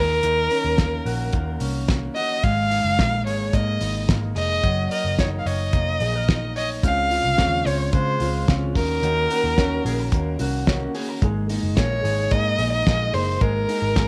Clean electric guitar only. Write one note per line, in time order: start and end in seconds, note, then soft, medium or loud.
0.00 0.23 D#3 medium
0.24 2.43 D#3 medium
0.51 1.60 C#4 medium
0.78 1.33 A#3 medium
1.06 2.15 F#4 medium
1.34 1.88 A#3 medium
1.61 2.49 C#4 medium
1.89 2.98 A#3 medium
2.16 2.49 F#4 medium
2.44 4.63 G#3 medium
2.71 3.81 D#4 soft
2.99 3.53 A#3 medium
3.26 4.35 G#4 medium
3.54 4.08 A#3 medium
3.81 5.19 D#4 medium
4.09 5.74 A#3 medium
4.36 4.69 G#4 medium
4.64 6.83 F#3 medium
4.91 6.01 A#4 medium
5.19 6.28 D#4 medium
5.46 6.56 C#5 medium
5.74 6.89 A#3 medium
6.02 6.16 G#4 medium
6.16 6.89 A#4 soft
6.29 6.89 D#4 medium
6.56 7.66 C#5 medium
6.84 8.81 C#3 medium
7.11 8.20 F4 medium
7.38 8.48 C#4 medium
7.66 8.81 C5 medium
7.93 8.81 G#3 medium
8.21 8.81 F4 medium
8.48 9.06 C#4 medium
8.75 9.03 D#3 medium
9.03 11.22 D#3 medium
9.31 10.40 F#4 medium
9.58 10.67 C#4 medium
9.86 10.00 G#4 medium
10.00 10.94 A#4 medium
10.14 11.77 A#3 medium
10.41 11.28 F#4 medium
10.68 11.28 C#4 medium
10.95 11.09 G#4 medium
11.09 11.28 A#4 medium
11.22 13.41 G#3 medium
11.50 12.58 D#4 medium
11.77 12.32 A#3 medium
12.05 13.14 G#4 medium
12.32 12.87 A#3 medium
12.59 13.68 D#4 medium
12.87 13.96 A#3 medium
13.14 14.08 G#4 medium
13.41 14.08 G#3 medium
13.69 14.08 D#4 medium
13.96 14.08 A#3 medium